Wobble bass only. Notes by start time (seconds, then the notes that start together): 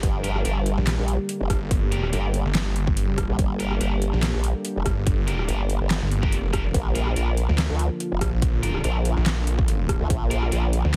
0.03 G1
0.45 G1
0.99 A#1
1.41 F1
2.13 G1
3.29 A#1
3.39 G1
3.81 G1
4.34 A#1
4.76 F1
5.49 G1
5.81 G1
6.74 A#1
7.16 A#1
7.70 D2
8.12 F1
8.84 A#1
10.01 D2
10.10 A#1
10.52 A#1